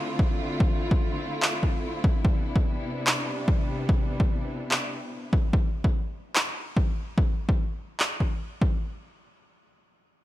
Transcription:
Already playing: string section D3 A3 C4 E4 F4
0.19 kick
0.60 kick
0.91 kick
1.42 clap
1.63 kick
2.04 kick
2.24 string section C3 G3 B3 D4, kick
2.56 kick
3.07 clap
3.48 kick
3.89 kick
4.20 kick
4.71 clap
5.33 kick
5.53 kick
5.84 kick
6.35 clap
6.77 kick
7.18 kick
7.49 kick
8.00 clap
8.20 kick
8.61 kick

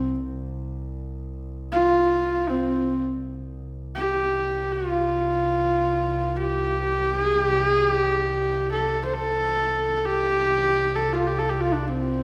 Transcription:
Already playing: double bass C2
1.72 horsehead fiddle F4
2.49 horsehead fiddle C4
3.23 double bass C2
3.95 horsehead fiddle G4
4.73 horsehead fiddle F4
6.37 horsehead fiddle G4
7.20 horsehead fiddle G#4
7.42 horsehead fiddle G4
7.66 horsehead fiddle G#4
7.89 horsehead fiddle G4
8.72 horsehead fiddle A4
9.05 horsehead fiddle C5
9.14 horsehead fiddle A4
9.97 horsehead fiddle A4
10.06 horsehead fiddle G4
10.42 double bass C2
10.96 horsehead fiddle A4
11.13 horsehead fiddle F4
11.27 horsehead fiddle G4
11.39 horsehead fiddle A4
11.49 horsehead fiddle G4
11.61 horsehead fiddle F4
11.73 horsehead fiddle D4
11.88 horsehead fiddle C4

